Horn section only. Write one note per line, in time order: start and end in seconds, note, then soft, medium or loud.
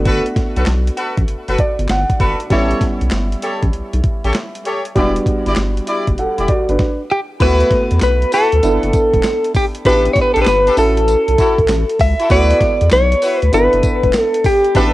0.05 0.23 F#4 medium
0.05 0.23 A4 medium
0.05 0.23 B4 loud
0.56 0.65 F#4 medium
0.56 0.65 A4 medium
0.56 0.66 B4 medium
0.97 1.15 F#4 medium
0.97 1.15 A4 medium
0.97 1.15 B4 medium
1.48 1.57 F#4 medium
1.48 1.57 A4 medium
1.48 1.57 B4 medium
2.20 2.37 F#4 medium
2.20 2.37 A4 medium
2.20 2.38 B4 medium
2.50 2.79 G4 medium
2.50 2.80 A4 medium
2.50 2.80 C#5 loud
3.42 3.60 G4 medium
3.42 3.60 A4 medium
3.42 3.60 C#5 medium
4.24 4.33 G4 medium
4.24 4.33 A4 medium
4.24 4.33 C#5 medium
4.65 4.82 G4 medium
4.65 4.83 A4 medium
4.65 4.83 C#5 medium
4.95 5.13 E4 medium
4.95 5.13 G4 medium
4.95 5.13 D5 medium
5.46 5.55 E4 medium
5.46 5.55 G4 medium
5.46 5.56 D5 medium
5.87 6.05 E4 medium
5.87 6.05 G4 medium
5.87 6.05 D5 medium
6.38 6.47 E4 medium
6.38 6.47 G4 medium
6.38 6.47 D5 medium
7.40 7.69 E4 medium
7.40 7.69 F#4 medium
7.40 7.70 B4 loud
8.32 8.50 E4 medium
8.32 8.50 F#4 medium
8.32 8.50 B4 medium
9.85 10.03 D4 medium
9.85 10.03 G4 medium
9.85 10.03 A4 loud
10.36 10.45 D4 medium
10.36 10.45 G4 medium
10.36 10.45 A4 medium
10.67 10.76 D4 medium
10.67 10.76 G4 medium
10.67 10.76 A4 medium
11.38 11.56 E4 medium
11.38 11.56 F#4 medium
11.38 11.56 A4 medium
12.20 12.29 E4 medium
12.20 12.29 F#4 medium
12.20 12.29 A4 medium
12.30 12.59 E4 loud
12.30 12.59 F#4 medium
12.30 12.59 B4 loud
13.22 13.39 E4 medium
13.22 13.40 F#4 medium
13.22 13.40 B4 medium
14.75 14.93 D4 loud
14.75 14.93 G4 medium
14.75 14.93 A4 loud